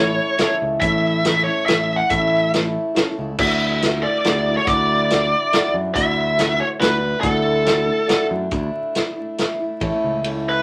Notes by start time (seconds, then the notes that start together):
Already playing: A1 E3 A3 C#4 E4 A4 C#5
0.00 E4
0.38 E3 A3 C#4 E4 A4 C#5, snare, closed hi-hat
0.62 C#2
0.80 A1 A2 E3 A3 C#4 E4 A4 C#5 E5, kick, closed hi-hat
1.23 E3 A3 C#4 E4 A4 C#5, snare, closed hi-hat
1.44 C#4 E4 C#5
1.49 A3
1.66 A1 E3 A3 C#4 E4 A4 C#5 E5, snare, closed hi-hat
1.71 E4
1.96 F#5
2.10 A1 A2 E3 A3 C#4 E4 A4 C#5 E5, kick, closed hi-hat
2.53 E3 A3 E4 A4 C#5, snare, closed hi-hat
2.95 E3 A3 C#4 E4 A4 C#5, snare, closed hi-hat
3.17 C#2 A3 C#4 E4
3.38 D2 D3 F#3 A3 D4 E4 F#4 D5 E5, kick, crash
3.81 F#3 A3 D4 E4 F#4 E5, snare, closed hi-hat
3.86 E4
4.03 D4 E4 D5
4.07 A3
4.24 D2 F#3 A3 D4 E4 F#4 G#4, snare, closed hi-hat
4.48 A3 D4 E4
4.57 C#5
4.65 D2 D3 E4 F#4 D5, kick, closed hi-hat
4.70 F#3 A3 D4 E4
5.10 F#3 A3 D4 E4 F#4 D5, snare, closed hi-hat
5.52 F#3 A3 D4 E4 F#4 D5, snare, closed hi-hat
5.74 F#2
5.95 D2 D3 F#3 A3 D4 E4 F#4 D5 E5, kick, closed hi-hat
6.38 F#3 A3 D4 E4 F#4 B4, snare, closed hi-hat
6.59 A3 D4 E4 C#5
6.79 D2 F#3 A3 D4 E4 F#4 B4 D5, snare, closed hi-hat
6.84 E4
7.01 A3 D4 E4
7.21 D2 D3 F#3 A3 E4 F#4 A4 D5, kick, closed hi-hat
7.25 D4 E4
7.65 F#3 A3 E4 F#4 D5, snare, closed hi-hat
7.85 A3 D4 E4
8.08 F#3 A3 D4 E4 F#4 D5, snare, closed hi-hat
8.29 F#2 A3 D4 E4
8.51 D2 D3 F#3 A3 D4 E4, kick, closed hi-hat
8.95 F#3 A3 D4 E4, snare, closed hi-hat
9.16 A3 D4 E4
9.38 F#3 A3 D4 E4, snare, closed hi-hat
9.59 A3 D4 E4
9.80 A1 A2 E3 A3 C#4 E4 A4 C#5, kick, ride
10.04 C#2
10.24 E3 A3 C#4 E4 A4 C#5, ride
10.49 B4